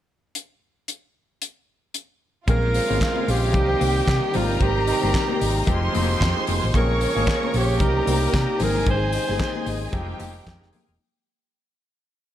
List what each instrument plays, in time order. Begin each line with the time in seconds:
0.35 closed hi-hat
0.88 closed hi-hat
1.42 closed hi-hat
1.94 closed hi-hat
2.47 fingered electric bass A#1, tine electric piano C#3 G#3 A#3 C4 F4, tonewheel organ C#3 G#3 A#3 C4, clean electric guitar C#4 G#4 C5, violin section F4 F5, alto saxophone A#4, kick, closed hi-hat, muted conga, low conga
2.63 muted clean electric guitar stroke, muted conga
2.74 clean electric guitar C#4 G#4 C5, open hi-hat
2.88 fingered electric bass G#1, tine electric piano C#3 G#3 A#3 C4 E4, clean electric guitar C#4 G#4 C#5, high conga
2.96 tine electric piano F4
3.01 kick, snare, clap, closed hi-hat, muted conga
3.15 clean electric guitar C#4 G#4 C5, muted conga, high conga
3.27 fingered electric bass A#1, clean electric guitar C#4 G#4 C5, alto saxophone G4, open hi-hat
3.41 muted clean electric guitar stroke
3.52 fingered electric bass C2, tine electric piano D#3 G3 A#3 C4 G4, tonewheel organ G3 D#4, violin section G4 G5, kick, closed hi-hat, muted conga, low conga
3.68 clean electric guitar D#4 A#4 C5, muted conga
3.79 fingered electric bass C2, tine electric piano D3 G3 A#3 C4 G4, clean electric guitar D#4 A#4 C5, open hi-hat, high conga
3.85 tine electric piano D#3
3.94 muted clean electric guitar stroke
4.05 fingered electric bass C3, muted clean electric guitar stroke, kick, snare, clap, closed hi-hat, muted conga
4.20 muted clean electric guitar stroke
4.31 tonewheel organ C3 C4 D#4 G4, tine electric piano D#3 G3 G#3 C4 F#4, clean electric guitar D#4 G4 C5, violin section A#4 A#5, open hi-hat, high conga, low conga
4.35 fingered electric bass G#1, alto saxophone F4
4.42 tine electric piano G4
4.48 fingered electric bass G1, clean electric guitar D#4 G4 C5
4.58 fingered electric bass G#1, clean electric guitar D#4 G4 C5, kick, closed hi-hat, low conga
4.63 alto saxophone G4
4.73 muted clean electric guitar stroke
4.85 clean electric guitar D#4 G4 D#5, open hi-hat
5.00 fingered electric bass G1, tine electric piano D#3 G3 G#3 C4 F#4, clean electric guitar D#4 G4 C5, high conga
5.08 tine electric piano G4
5.13 muted clean electric guitar stroke, kick, snare, clap, closed hi-hat
5.27 clean electric guitar D#4 G4 C5, muted conga, high conga
5.39 fingered electric bass G#1, clean electric guitar D#4 G4 D#5, open hi-hat
5.54 muted clean electric guitar stroke
5.65 fingered electric bass F1, tonewheel organ D#3 G#3 F4, tine electric piano F3 G#3 C4 D#4 G4, violin section C5 C6, muted clean electric guitar stroke, kick, closed hi-hat, muted conga, low conga
5.80 clean electric guitar G#3 D#4 G4, muted conga
5.92 fingered electric bass F1, tine electric piano F3 G#3 C4 D#4 F#4, clean electric guitar G#3 D#4 G4, open hi-hat, high conga
6.02 tine electric piano G4
6.08 muted clean electric guitar stroke
6.21 fingered electric bass F2, muted clean electric guitar stroke, kick, snare, clap, closed hi-hat
6.36 clean electric guitar G#3 D#4 G#4, muted conga
6.47 fingered electric bass F1, clean electric guitar G#3 D#4 G#4, open hi-hat, high conga, low conga
6.63 fingered electric bass A1, muted clean electric guitar stroke
6.73 fingered electric bass A#1, tonewheel organ C#3 A#3 C#4, tine electric piano F3 A#3 C4 C#4 G#4, clean electric guitar C#4 G#4 C5, alto saxophone A#4, violin section C#5 C#6, kick, closed hi-hat, muted conga, low conga
6.88 muted clean electric guitar stroke, muted conga
6.99 clean electric guitar C#4 G#4 C5, open hi-hat
7.14 fingered electric bass G#1, tine electric piano F3 G#3 A#3 C#4 G#4, clean electric guitar C#4 G#4 C#5, high conga
7.27 kick, snare, clap
7.41 clean electric guitar C#4 G#4 C5, muted conga, high conga
7.53 fingered electric bass A#1, clean electric guitar C#4 G#4 C5, open hi-hat
7.57 alto saxophone G4
7.67 muted clean electric guitar stroke
7.79 fingered electric bass C2, tine electric piano G3 A#3 C4 D#4 A#4, tonewheel organ G3 D#4, violin section A#4 A#5, muted clean electric guitar stroke, kick, closed hi-hat, muted conga, low conga
7.94 clean electric guitar D#4 A#4 C5, muted conga
8.05 fingered electric bass C2, tine electric piano G3 A#3 C4 D#4 F#4, clean electric guitar D#4 A#4 C5, open hi-hat, high conga
8.13 tine electric piano G4
8.20 muted clean electric guitar stroke
8.33 fingered electric bass C3, kick, snare, clap, closed hi-hat
8.45 muted clean electric guitar stroke
8.51 muted conga
8.57 fingered electric bass G#1, tine electric piano D#3 G#3 C4 D#4, tonewheel organ G#3, clean electric guitar D#4 G4 C5, violin section G#4 G#5, open hi-hat
8.61 tine electric piano G#4, alto saxophone A#4, high conga, low conga
8.73 fingered electric bass G1, clean electric guitar D#4 G4 C5
8.85 fingered electric bass G#1, clean electric guitar D#4 G4 C5, kick, closed hi-hat, muted conga, low conga
8.90 alto saxophone C5
9.01 muted clean electric guitar stroke
9.12 clean electric guitar D#4 G4 D#5, open hi-hat
9.27 fingered electric bass G1, tine electric piano D#3 G#3 C4 D#4 G4, clean electric guitar D#4 G4 C5, high conga
9.35 tine electric piano G#4
9.40 muted clean electric guitar stroke, kick, snare, clap, closed hi-hat
9.55 clean electric guitar D#4 G4 C5, muted conga, high conga
9.66 fingered electric bass G#1, clean electric guitar D#4 G4 D#5, open hi-hat
9.83 muted clean electric guitar stroke
9.92 fingered electric bass F1, tonewheel organ D#3 F4, tine electric piano F3 G#3 C4 D#4 G4, violin section G4 G5, muted clean electric guitar stroke, kick, closed hi-hat, low conga
10.06 clean electric guitar G#3 D#4 G4, muted conga
10.18 fingered electric bass F1, tine electric piano F3 G#3 C4 D#4 G4, clean electric guitar G#3 D#4 G4, open hi-hat, high conga
10.33 muted clean electric guitar stroke
10.47 fingered electric bass F2, kick, snare, clap, closed hi-hat
10.60 clean electric guitar G#3 D#4 G#4, snare, muted conga
10.73 clean electric guitar G#3 D#4 G#4, open hi-hat, high conga, low conga
10.88 fingered electric bass E1, muted clean electric guitar stroke